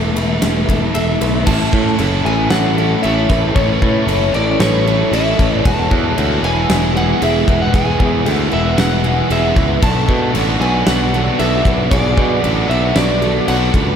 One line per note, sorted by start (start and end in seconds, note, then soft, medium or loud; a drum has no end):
0.00 0.12 E1 medium
0.00 0.69 E2 medium
0.00 0.16 E3 medium
0.00 0.93 E3 medium
0.00 0.40 A3 medium
0.00 1.43 A3 medium
0.00 0.67 B3 medium
0.00 0.15 E4 medium
0.00 0.16 A4 medium
0.00 0.92 B4 medium
0.00 1.43 E5 medium
0.15 0.38 E1 medium
0.15 0.67 B3 medium
0.15 1.47 E4 medium
0.15 0.69 B4 medium
0.15 ride medium
0.42 0.64 E1 medium
0.42 1.19 A3 medium
0.42 1.47 E4 medium
0.42 snare loud
0.42 ride medium
0.68 0.91 E1 medium
0.68 1.47 B3 medium
0.68 0.94 A4 medium
0.68 kick medium
0.68 ride medium
0.94 1.17 E1 medium
0.94 1.46 E3 medium
0.94 1.21 A4 medium
0.94 1.46 E5 medium
0.94 ride medium
1.21 1.43 B1 medium
1.21 1.47 A3 medium
1.21 1.47 B4 medium
1.21 ride medium
1.46 1.69 A1 medium
1.46 2.51 A2 medium
1.46 1.98 E3 medium
1.46 1.75 A3 medium
1.46 1.74 C#4 medium
1.46 1.73 E4 loud
1.46 5.60 A4 medium
1.46 1.71 A4 loud
1.46 5.60 C#5 medium
1.46 1.96 A5 loud
1.46 5.60 B5 medium
1.46 kick loud
1.46 crash loud
1.46 crash medium
1.72 1.94 A2 medium
1.72 2.01 C#4 medium
1.72 2.01 E4 medium
1.72 2.00 A4 medium
1.72 kick medium
1.76 2.00 A3 medium
1.99 2.21 F#1 medium
1.99 2.52 E3 medium
1.99 2.27 A3 medium
1.99 2.26 C#4 medium
1.99 2.25 E4 medium
1.99 2.26 A4 medium
1.99 2.24 A4 medium
1.99 crash medium
2.25 2.46 A1 medium
2.25 2.52 A3 medium
2.25 2.52 C#4 medium
2.25 2.54 E4 medium
2.25 2.50 A4 medium
2.25 2.78 B4 medium
2.25 2.50 G#5 medium
2.50 2.94 A1 loud
2.50 3.04 A2 medium
2.50 3.03 E3 loud
2.50 2.78 A3 loud
2.50 2.78 C#4 loud
2.50 2.77 E4 loud
2.50 2.75 A4 loud
2.50 3.05 F#5 loud
2.50 snare loud
2.50 crash medium
2.76 3.03 A3 medium
2.76 3.04 C#4 medium
2.76 3.06 E4 medium
2.76 3.04 A4 medium
2.76 3.02 A4 medium
3.03 3.26 A1 medium
3.03 3.56 E3 medium
3.03 3.32 A3 medium
3.03 3.31 C#4 medium
3.03 3.30 E4 medium
3.03 3.29 A4 medium
3.03 3.28 A4 medium
3.03 3.55 E5 medium
3.03 crash medium
3.29 3.51 A1 medium
3.29 3.56 A3 medium
3.29 3.56 C#4 medium
3.29 3.58 E4 medium
3.29 3.55 A4 medium
3.29 4.06 B4 medium
3.29 kick medium
3.29 snare soft
3.55 3.77 A1 loud
3.55 4.08 A2 medium
3.55 4.07 E3 loud
3.55 3.83 A3 loud
3.55 3.82 C#4 loud
3.55 3.81 E4 loud
3.55 3.80 A4 loud
3.55 4.35 C#5 medium
3.55 kick loud
3.55 crash medium
3.81 4.03 A2 medium
3.81 4.08 A3 medium
3.81 4.08 C#4 medium
3.81 4.10 E4 medium
3.81 4.08 A4 medium
3.81 kick medium
4.07 4.29 F#1 medium
4.07 4.60 E3 medium
4.07 4.36 A3 medium
4.07 4.35 C#4 medium
4.07 4.34 E4 medium
4.07 4.34 A4 medium
4.07 4.32 A4 medium
4.07 crash medium
4.33 4.55 A1 medium
4.33 4.61 A3 medium
4.33 4.61 C#4 medium
4.33 4.62 E4 medium
4.33 4.60 A4 medium
4.33 4.87 B4 medium
4.33 4.61 D5 medium
4.60 5.02 A1 loud
4.60 5.12 A2 loud
4.60 5.11 E3 loud
4.60 4.88 A3 medium
4.60 4.86 C#4 loud
4.60 4.86 E4 loud
4.60 4.85 A4 loud
4.60 5.14 C#5 loud
4.60 snare loud
4.60 crash medium
4.86 5.12 A3 medium
4.86 5.13 C#4 medium
4.86 5.14 E4 medium
4.86 5.13 A4 medium
4.86 5.12 A4 medium
5.12 5.33 A1 medium
5.12 5.64 E3 medium
5.12 5.39 A3 medium
5.12 5.38 C#4 medium
5.12 5.37 E4 medium
5.12 5.39 A4 medium
5.12 5.37 A4 medium
5.12 5.56 E5 loud
5.12 crash medium
5.37 5.60 A1 medium
5.37 5.64 A3 medium
5.37 5.64 C#4 medium
5.37 5.65 E4 medium
5.37 5.63 A4 medium
5.37 6.18 B4 medium
5.37 kick medium
5.56 5.67 D5 loud
5.63 5.86 E1 loud
5.63 6.69 E2 loud
5.63 6.17 B2 loud
5.63 5.93 E3 medium
5.63 5.92 G#3 loud
5.63 9.79 G#3 medium
5.63 5.91 B3 loud
5.63 5.90 E4 loud
5.63 6.96 F#4 loud
5.63 5.90 G#4 loud
5.63 9.79 F#5 medium
5.63 6.44 A5 loud
5.63 9.79 E6 medium
5.63 kick loud
5.63 crash medium
5.90 6.12 E2 medium
5.90 6.15 E3 medium
5.90 6.17 G#3 medium
5.90 6.18 B3 medium
5.90 6.19 E4 medium
5.90 6.18 G#4 medium
5.90 kick medium
6.16 6.39 D2 medium
6.16 6.45 E3 medium
6.16 6.44 G#3 medium
6.16 6.43 B3 medium
6.16 6.42 E4 medium
6.16 6.42 G#4 medium
6.16 6.44 A4 medium
6.16 crash medium
6.42 6.64 E1 medium
6.42 6.70 E3 medium
6.42 6.70 G#3 medium
6.42 6.71 B3 medium
6.42 6.71 E4 medium
6.42 6.69 G#4 medium
6.42 7.49 B4 medium
6.42 6.97 G#5 loud
6.70 7.12 E1 medium
6.70 7.22 E2 medium
6.70 7.22 B2 medium
6.70 6.97 E3 loud
6.70 6.96 G#3 medium
6.70 6.96 B3 loud
6.70 6.94 E4 loud
6.70 6.93 G#4 loud
6.70 snare loud
6.70 crash medium
6.94 7.19 E3 medium
6.94 7.20 G#3 medium
6.94 7.22 B3 medium
6.94 7.22 E4 medium
6.94 7.22 G#4 medium
6.94 7.21 G#4 medium
6.94 7.23 F#5 loud
7.21 7.43 E1 loud
7.21 7.49 E3 medium
7.21 7.48 G#3 medium
7.21 7.48 B3 medium
7.21 7.46 E4 medium
7.21 7.48 G#4 medium
7.21 7.47 G#4 medium
7.21 7.63 E5 loud
7.21 crash medium
7.47 7.69 E1 medium
7.47 7.73 E3 medium
7.47 7.73 G#3 medium
7.47 7.74 B3 medium
7.47 7.74 E4 medium
7.47 7.74 G#4 medium
7.47 8.26 B4 medium
7.47 kick medium
7.62 7.75 F#5 medium
7.73 7.95 E1 loud
7.73 8.25 E2 loud
7.73 8.26 B2 medium
7.73 8.01 E3 medium
7.73 8.00 G#3 medium
7.73 8.00 B3 loud
7.73 7.98 E4 loud
7.73 8.27 G#4 medium
7.73 7.98 G#4 loud
7.73 8.34 G#5 loud
7.73 kick loud
7.73 crash medium
7.99 8.21 E2 medium
7.99 8.24 E3 medium
7.99 8.25 G#3 medium
7.99 8.26 B3 medium
7.99 8.26 E4 medium
7.99 8.27 G#4 medium
7.99 kick medium
8.25 8.47 D2 medium
8.25 8.52 E3 medium
8.25 8.51 G#3 medium
8.25 8.51 B3 medium
8.25 8.49 E4 medium
8.25 8.51 G#4 medium
8.25 8.51 A4 medium
8.25 crash medium
8.34 8.53 F#5 loud
8.50 8.74 E1 medium
8.50 8.77 E3 medium
8.50 8.78 G#3 medium
8.50 8.79 B3 medium
8.50 8.79 E4 medium
8.50 8.79 G#4 medium
8.50 9.56 B4 medium
8.50 8.79 E5 medium
8.77 9.20 E1 medium
8.77 9.30 E2 medium
8.77 9.30 B2 medium
8.77 9.05 E3 loud
8.77 9.04 G#3 medium
8.77 9.04 B3 loud
8.77 9.02 E4 loud
8.77 9.03 G#4 loud
8.77 9.32 F#5 loud
8.77 snare loud
8.77 crash medium
9.03 9.29 E3 medium
9.03 9.30 G#3 medium
9.03 9.31 B3 medium
9.03 9.31 E4 medium
9.03 9.31 G#4 medium
9.03 9.29 G#4 medium
9.30 9.52 E1 medium
9.30 9.57 E3 medium
9.30 9.56 G#3 medium
9.30 9.56 B3 medium
9.30 9.54 E4 medium
9.30 9.57 G#4 medium
9.30 9.56 G#4 medium
9.30 9.83 E5 medium
9.30 crash medium
9.55 9.78 C#2 loud
9.55 9.82 E3 medium
9.55 9.81 G#3 medium
9.55 9.84 B3 medium
9.55 9.80 E4 medium
9.55 9.81 G#4 medium
9.55 9.86 B4 medium
9.55 kick medium
9.82 10.04 B1 loud
9.82 10.85 B2 loud
9.82 10.34 F#3 medium
9.82 10.10 B3 medium
9.82 10.09 D4 loud
9.82 10.07 F#4 loud
9.82 10.34 A4 loud
9.82 13.96 B4 medium
9.82 13.96 F#5 medium
9.82 10.32 A5 medium
9.82 13.96 D6 medium
9.82 kick loud
9.82 crash medium
10.08 10.30 B2 medium
10.08 10.35 B3 medium
10.08 10.36 D4 medium
10.08 10.36 F#4 medium
10.08 kick medium
10.34 10.56 A1 medium
10.34 10.86 F#3 medium
10.34 10.63 B3 medium
10.34 10.61 D4 medium
10.34 10.60 F#4 medium
10.34 10.65 A4 medium
10.34 crash medium
10.60 10.81 B1 medium
10.60 10.86 B3 medium
10.60 10.88 D4 medium
10.60 10.87 F#4 medium
10.60 11.13 B4 medium
10.60 10.86 G#5 loud
10.86 11.29 B1 loud
10.86 11.38 B2 medium
10.86 11.37 F#3 loud
10.86 11.14 B3 loud
10.86 11.14 D4 medium
10.86 11.11 F#4 loud
10.86 11.39 F#5 loud
10.86 snare loud
10.86 crash medium
11.12 11.38 B3 medium
11.12 11.40 D4 medium
11.12 11.40 F#4 medium
11.12 11.40 A4 medium
11.38 11.61 B1 medium
11.38 11.90 F#3 medium
11.38 11.66 B3 medium
11.38 11.66 D4 medium
11.38 11.63 F#4 medium
11.38 11.66 A4 medium
11.38 11.93 E5 medium
11.38 crash medium
11.64 11.86 B1 loud
11.64 11.91 B3 medium
11.64 11.93 D4 medium
11.64 11.92 F#4 medium
11.64 11.92 B4 medium
11.64 kick medium
11.91 12.13 B1 loud
11.91 12.43 B2 loud
11.91 12.42 F#3 medium
11.91 12.19 B3 loud
11.91 12.18 D4 loud
11.91 12.16 F#4 loud
11.91 12.44 G#4 loud
11.91 12.72 D5 medium
11.91 kick loud
11.91 crash medium
12.17 12.39 B2 medium
12.17 12.43 B3 medium
12.17 12.45 D4 medium
12.17 12.45 F#4 medium
12.17 kick medium
12.43 12.65 A1 medium
12.43 12.95 F#3 medium
12.43 12.71 B3 medium
12.43 12.70 D4 medium
12.43 12.68 F#4 medium
12.43 12.70 A4 medium
12.43 crash medium
12.69 12.91 B1 medium
12.69 12.96 B3 medium
12.69 12.97 D4 medium
12.69 12.97 F#4 medium
12.69 13.22 B4 medium
12.69 12.96 E5 medium
12.96 13.38 B1 loud
12.96 13.48 B2 loud
12.96 13.47 F#3 loud
12.96 13.24 B3 loud
12.96 13.23 D4 loud
12.96 13.21 F#4 loud
12.96 13.50 D5 medium
12.96 snare loud
12.96 crash medium
13.22 13.48 B3 medium
13.22 13.49 D4 medium
13.22 13.50 F#4 medium
13.22 13.48 A4 medium
13.48 13.69 B1 medium
13.48 13.96 F#3 medium
13.48 13.76 B3 medium
13.48 13.75 D4 medium
13.48 13.73 F#4 medium
13.48 13.78 A4 medium
13.48 13.96 F#5 medium
13.48 crash medium
13.74 13.95 C#2 loud
13.74 13.96 B3 medium
13.74 13.96 D4 medium
13.74 13.96 F#4 medium
13.74 13.96 B4 medium
13.74 kick medium